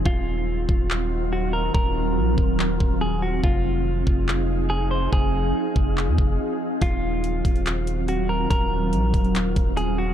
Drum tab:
HH |----------------|----------------|----------------|----------------|
CP |--------x-------|--------x-------|--------x-------|--------x-------|
BD |o-----o---------|o-----o---o-----|o-----o---------|o-----o---o-----|

HH |x---x-xxx-x-x---|x---x-xxx-x-x---|
CP |--------x-------|--------x-------|
BD |o-----o---------|o-----o---o-----|